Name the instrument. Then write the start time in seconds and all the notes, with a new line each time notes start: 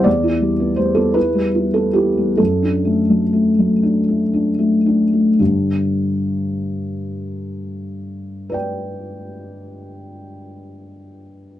felt piano
0.04 E2 D5
0.24 E4
0.41 G3
0.60 B3
0.76 G3 C5
0.94 B3 A4
1.14 E4 B4
1.35 G3
1.55 E4
1.74 B3 A4
1.93 E4 G4
2.17 G3
2.37 F#2 A4
2.63 D4
2.85 A3
3.10 F#3
3.33 A3
3.59 F#3
3.83 D4
4.08 A3
4.33 D4
4.59 A3
4.86 D4
5.13 A3
5.39 G2 D3
8.50 B4 D5
8.54 G5